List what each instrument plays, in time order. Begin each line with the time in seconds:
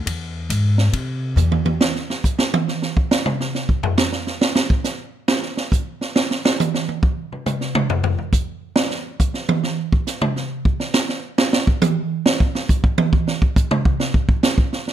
0.06 upright bass E2, kick, ride
0.49 upright bass G#2, kick, hi-hat pedal, ride
0.78 snare
0.93 upright bass C3, kick, ride
1.36 upright bass E2, hi-hat pedal, high tom
1.52 high tom
1.66 high tom
1.81 snare
1.95 snare
2.10 snare
2.24 kick, hi-hat pedal
2.39 snare
2.54 high tom
2.68 snare
2.82 snare
2.97 kick
3.11 snare, hi-hat pedal
3.26 mid tom
3.40 snare
3.55 snare
3.69 kick
3.83 floor tom
3.98 snare, hi-hat pedal
4.12 snare
4.27 snare
4.41 snare
4.55 snare
4.70 kick
4.84 snare, hi-hat pedal
5.28 snare
5.42 snare
5.57 snare
5.72 kick, hi-hat pedal
6.01 snare
6.16 snare
6.31 snare
6.45 snare
6.60 hi-hat pedal, high tom
6.74 snare
6.89 high tom
7.03 kick
7.32 mid tom
7.46 hi-hat pedal, mid tom
7.61 snare
7.75 mid tom
7.90 floor tom
8.04 floor tom
8.18 floor tom
8.32 kick, hi-hat pedal
8.76 snare
8.90 snare
9.20 kick, hi-hat pedal
9.34 snare
9.49 high tom
9.63 snare
9.93 kick
10.07 snare, hi-hat pedal
10.21 mid tom
10.36 snare
10.65 kick
10.80 snare
10.94 snare, hi-hat pedal
11.09 snare
11.38 snare
11.53 snare
11.67 kick
11.82 hi-hat pedal, high tom
12.26 snare
12.40 kick
12.55 snare
12.69 kick, hi-hat pedal
12.84 kick
12.98 high tom
13.13 kick
13.27 snare
13.42 kick
13.56 kick, hi-hat pedal
13.71 mid tom
13.85 kick
14.00 snare
14.14 kick
14.29 kick
14.43 snare, hi-hat pedal
14.58 kick
14.73 snare
14.87 snare